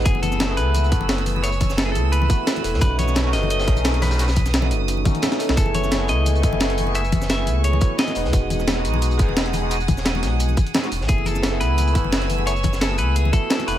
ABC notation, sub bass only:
X:1
M:4/4
L:1/16
Q:"Swing 16ths" 1/4=174
K:F#dor
V:1 name="Sub bass" clef=bass
F,,,6 C,,4 F,,,6- | F,,,6 C,,4 z4 E,,, F,, | B,,,6 F,,,4 B,,,6- | B,,,6 F,,,4 z4 z B,,, |
F,,,6 C,,4 F,,,6- | F,,,6 C,,4 z4 E,,, E,, | E,,,6 B,,,4 E,,,6- | E,,,6 B,,,4 z4 E,,, B,,, |
F,,,6 C,,4 F,,,6- | F,,,6 C,,4 z4 E,,, z |]